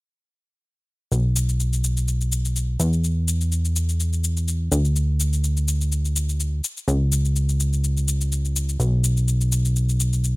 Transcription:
1.12 2.77 B1 medium
1.12 shaker soft
1.36 shaker medium
1.49 shaker soft
1.60 shaker soft
1.73 shaker soft
1.84 shaker medium
1.97 shaker soft
2.08 shaker soft
2.21 shaker soft
2.32 shaker medium
2.45 shaker soft
2.56 shaker soft
2.80 4.70 E2 medium
2.80 shaker medium
2.93 shaker soft
3.04 shaker soft
3.28 shaker medium
3.41 shaker soft
3.52 shaker soft
3.65 shaker soft
3.76 shaker medium
3.89 shaker soft
4.00 shaker soft
4.13 shaker soft
4.24 shaker medium
4.37 shaker soft
4.48 shaker soft
4.72 6.62 D2 medium
4.72 shaker medium
4.85 shaker soft
4.96 shaker soft
5.20 shaker medium
5.33 shaker soft
5.44 shaker soft
5.57 shaker soft
5.68 shaker medium
5.81 shaker soft
5.92 shaker soft
6.05 shaker soft
6.16 shaker medium
6.29 shaker soft
6.40 shaker soft
6.64 shaker medium
6.77 shaker soft
6.88 8.78 C#2 medium
6.88 shaker soft
7.12 shaker medium
7.25 shaker soft
7.36 shaker soft
7.49 shaker soft
7.60 shaker medium
7.73 shaker soft
7.84 shaker soft
7.97 shaker soft
8.08 shaker medium
8.21 shaker soft
8.32 shaker soft
8.45 shaker soft
8.56 shaker medium
8.69 shaker soft
8.80 10.36 B1 medium
8.80 shaker soft
9.04 shaker medium
9.17 shaker soft
9.28 shaker soft
9.41 shaker soft
9.52 shaker medium
9.65 shaker soft
9.76 shaker soft
9.89 shaker soft
10.00 shaker medium
10.13 shaker soft
10.24 shaker soft

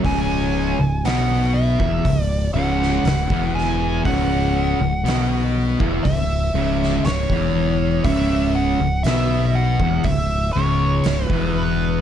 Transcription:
0.04 0.75 C#1 medium
0.04 0.77 C#2 medium
0.04 0.78 C#3 loud
0.04 1.05 G#5 loud
0.04 kick loud
0.04 open hi-hat medium
0.79 1.02 C#1 medium
0.79 1.04 C#2 medium
1.04 1.75 B1 medium
1.04 1.78 B2 medium
1.04 1.79 B3 loud
1.04 1.56 F#5 loud
1.04 snare loud
1.04 open hi-hat medium
1.54 2.22 E5 loud
1.80 2.03 E1 medium
1.80 2.03 E2 medium
1.80 2.03 E3 loud
1.80 kick loud
2.05 2.51 C#1 medium
2.05 2.45 C#2 medium
2.05 kick loud
2.05 open hi-hat medium
2.22 2.50 D5 loud
2.53 3.00 C#1 medium
2.53 3.03 C#2 medium
2.53 3.04 C#3 medium
2.53 3.55 F#5 medium
2.82 snare soft
3.03 3.27 C#1 medium
3.03 3.30 C#2 medium
3.03 open hi-hat medium
3.08 snare loud
3.30 4.01 E1 medium
3.30 4.04 E2 medium
3.30 4.04 E3 medium
3.30 kick loud
3.55 4.01 G#5 medium
3.55 snare soft
4.05 4.76 C#1 medium
4.05 4.78 C#2 loud
4.05 4.79 C#3 loud
4.05 6.01 F#5 loud
4.05 kick loud
4.05 open hi-hat medium
4.79 5.03 C#1 medium
4.79 5.05 C#2 medium
5.03 5.75 B1 medium
5.03 5.78 B2 medium
5.03 5.79 B3 medium
5.03 open hi-hat soft
5.08 snare loud
5.80 6.03 E1 loud
5.80 6.04 E2 medium
5.80 6.04 E3 medium
5.80 kick loud
6.03 6.51 C#1 medium
6.03 6.46 C#2 medium
6.03 7.05 E5 loud
6.03 kick loud
6.03 open hi-hat medium
6.54 7.01 C#1 medium
6.54 7.03 C#2 loud
6.54 7.04 C#3 medium
6.83 snare soft
7.04 7.27 C#1 medium
7.04 7.30 C#2 medium
7.04 8.04 C#5 medium
7.04 snare loud
7.04 open hi-hat medium
7.30 8.01 E1 loud
7.30 8.04 E2 medium
7.30 8.04 E3 medium
7.30 kick loud
8.04 8.76 C#1 medium
8.04 8.79 C#2 medium
8.04 8.79 C#3 loud
8.04 8.51 E5 loud
8.04 kick loud
8.04 open hi-hat medium
8.55 9.07 F#5 medium
8.79 9.03 C#1 medium
8.79 9.05 C#2 medium
9.03 9.75 B1 medium
9.03 9.79 B2 medium
9.03 9.79 B3 loud
9.03 9.56 E5 medium
9.03 snare loud
9.03 open hi-hat medium
9.55 10.07 F#5 loud
9.80 10.03 E1 loud
9.80 10.04 E2 medium
9.80 10.04 E3 medium
9.80 kick loud
10.04 10.51 C#1 medium
10.04 10.46 C#2 medium
10.04 10.52 E5 loud
10.04 kick loud
10.04 open hi-hat medium
10.53 11.02 C#1 medium
10.53 11.04 C#2 loud
10.53 11.04 C#3 medium
10.53 11.26 C#5 medium
11.04 11.29 C#1 medium
11.04 11.30 C#2 medium
11.04 snare loud
11.04 open hi-hat medium
11.26 12.01 E1 medium
11.26 11.54 B4 medium
11.26 kick loud
11.31 12.01 E2 medium
11.31 12.01 E3 loud
11.54 12.01 B4 medium

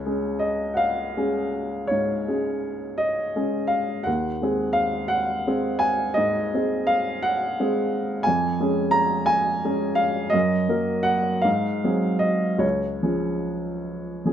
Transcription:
0.00 4.09 C#2 soft
0.00 0.41 C#5 soft
0.06 1.13 G#3 soft
0.06 1.13 C#4 soft
0.06 1.13 G#4 soft
0.39 0.71 D#5 medium
0.74 1.90 F5 medium
0.74 0.80 F#5 soft
1.17 1.87 G#3 soft
1.17 1.87 C#4 soft
1.17 1.88 G#4 soft
1.87 2.27 G#2 soft
1.87 2.99 C#5 medium
2.28 3.33 G#3 soft
2.28 3.33 C#4 soft
2.28 3.33 G#4 soft
2.98 3.70 D#5 medium
3.36 4.02 G#3 soft
3.36 4.03 C#4 soft
3.36 4.03 G#4 soft
3.67 4.05 F5 medium
4.04 4.41 D#2 soft
4.04 4.75 F#5 medium
4.42 5.43 G#3 soft
4.42 5.44 C4 soft
4.42 5.44 G#4 soft
4.73 5.10 F5 medium
5.08 5.80 F#5 medium
5.47 6.14 G#3 soft
5.47 6.14 C4 soft
5.47 6.15 G#4 soft
5.79 6.16 G#5 medium
6.14 6.53 G#2 soft
6.14 6.89 D#5 medium
6.54 7.56 G#3 soft
6.54 7.56 C4 soft
6.54 7.56 G#4 soft
6.87 7.24 F5 medium
7.23 7.91 F#5 medium
7.60 8.22 G#3 soft
7.60 8.22 C4 soft
7.60 8.23 G#4 soft
8.23 8.60 F2 soft
8.23 8.93 G#5 medium
8.60 9.60 G#3 soft
8.60 9.60 C#4 soft
8.60 9.60 G#4 soft
8.91 9.27 A#5 medium
9.26 9.97 G#5 medium
9.65 10.30 G#3 soft
9.65 10.30 C#4 soft
9.65 10.30 G#4 soft
9.95 10.32 F5 medium
10.30 10.68 F#2 soft
10.30 11.05 D#5 medium
10.69 11.41 F#3 soft
10.69 11.42 A#3 soft
10.69 11.42 A#4 soft
11.03 11.44 F#5 medium
11.42 11.83 G#2 soft
11.42 12.21 F5 medium
11.84 12.58 F#3 soft
11.84 12.58 C4 soft
11.84 12.59 G#4 soft
12.19 12.61 D#5 medium
12.58 13.00 C#2 soft
12.58 14.33 C#5 medium
13.03 14.21 F3 soft
13.03 14.21 C#4 soft
13.03 14.22 G#4 soft
14.25 14.33 F3 soft
14.25 14.33 C#4 soft
14.25 14.33 G#4 soft

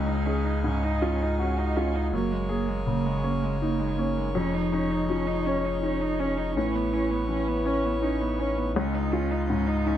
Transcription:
0.00 2.09 C#2 medium
0.00 2.14 C#2 medium
0.00 2.08 D#4 medium
0.00 4.31 G#4 medium
0.00 2.08 F5 medium
0.07 0.27 D#4 soft
0.26 0.46 C#4 medium
0.26 0.87 G#4 soft
0.44 0.64 D#4 soft
0.64 1.24 G#2 soft
0.64 0.85 C#4 medium
0.84 1.04 D#4 medium
1.02 1.24 C#4 medium
1.02 1.61 F4 medium
1.22 1.40 D#4 medium
1.39 1.60 C#4 soft
1.39 1.76 F#4 soft
1.58 1.78 D#4 soft
1.77 1.97 C#4 medium
1.77 2.13 F4 soft
1.95 2.13 D#4 soft
2.12 4.37 F#1 medium
2.12 4.31 F#2 medium
2.12 4.35 A#3 medium
2.12 2.33 A#3 soft
2.12 6.54 C#5 medium
2.31 2.51 G#3 soft
2.49 2.69 A#3 medium
2.49 3.08 G#4 soft
2.68 2.86 G#3 medium
2.86 3.46 C#3 soft
2.86 3.07 A#3 medium
3.06 3.25 G#3 soft
3.23 3.45 A#3 medium
3.23 3.83 C#4 medium
3.43 3.61 G#3 soft
3.62 3.81 A#3 medium
3.62 3.98 D#4 soft
3.79 3.99 G#3 soft
3.97 4.19 A#3 medium
3.97 4.35 C#4 soft
4.18 4.34 G#3 soft
4.35 6.57 F1 medium
4.35 6.52 F2 medium
4.35 6.56 G#3 medium
4.35 4.55 C#4 medium
4.35 6.56 D#4 medium
4.54 4.75 D#4 medium
4.72 4.92 C#4 soft
4.72 5.31 D#4 soft
4.91 5.09 D#4 soft
5.09 5.68 F3 soft
5.09 5.29 C#4 soft
5.27 5.48 D#4 medium
5.46 5.66 C#4 medium
5.46 6.05 C#4 medium
5.65 5.82 D#4 soft
5.83 6.03 C#4 soft
5.83 6.19 D#4 soft
6.01 6.21 D#4 medium
6.20 6.56 C#4 soft
6.20 6.39 C#4 medium
6.37 6.55 D#4 medium
6.56 8.76 A1 medium
6.56 8.73 A2 medium
6.56 8.76 E3 medium
6.56 8.76 B3 medium
6.56 6.76 C#4 medium
6.56 8.72 C#5 medium
6.75 6.95 B3 medium
6.93 7.13 C#4 medium
6.93 7.51 E4 soft
7.11 7.29 B3 medium
7.29 7.87 E3 soft
7.29 7.50 C#4 medium
7.49 7.68 B3 medium
7.65 8.24 C#4 soft
7.65 7.86 C#4 medium
7.85 8.02 B3 medium
8.02 8.23 C#4 soft
8.02 8.39 D#4 soft
8.22 8.41 B3 medium
8.39 8.60 C#4 medium
8.39 8.76 C#4 soft
8.58 8.76 B3 medium
8.74 9.97 C#2 medium
8.74 9.97 G#3 medium
8.74 8.96 C#4 medium
8.74 9.97 F4 medium
8.74 9.97 D#5 medium
8.94 9.14 D#4 soft
9.12 9.32 C#4 medium
9.12 9.71 F4 soft
9.31 9.49 D#4 soft
9.50 9.97 G#2 soft
9.50 9.69 C#4 medium
9.67 9.88 D#4 medium
9.86 9.97 C#4 medium
9.86 9.97 D#4 medium

